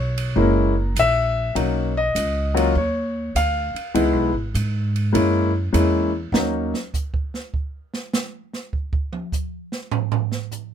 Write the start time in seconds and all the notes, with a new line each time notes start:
Already playing: B1 C#5
0.18 ride
0.36 F#1 G#3 A#3 C#4 E4, kick
0.40 A#4
0.96 A#1 E5, kick, hi-hat pedal, ride
1.55 B1 F#3 A#3 C#4 D#4, kick, ride
1.97 D#5
2.15 C#2, kick, hi-hat pedal, ride
2.54 F#3 A#3 C#4 F4, ride
2.75 D#2 C#5, kick
3.35 D2 F5, kick, hi-hat pedal, ride
3.75 muted upright bass stroke, ride
3.94 C#2 G#3 B3 D#4 E4, kick, ride
4.13 B1
4.32 G#1
4.54 G#2, kick, hi-hat pedal, ride
4.96 ride
5.13 F#2 G#3 A#3 C#4 E4, kick, ride
5.73 E2 G#3 A#3 C#4 E4, hi-hat pedal, ride
6.32 D#2 F#3 A#3 C#4 D#4, snare
6.74 snare
6.94 kick, hi-hat pedal
7.14 kick
7.34 snare
7.54 kick
7.94 snare
8.13 snare, hi-hat pedal
8.53 snare
8.73 kick
8.93 kick
9.13 mid tom
9.32 kick, hi-hat pedal
9.72 snare
9.91 floor tom
10.12 floor tom
10.32 snare
10.51 floor tom, hi-hat pedal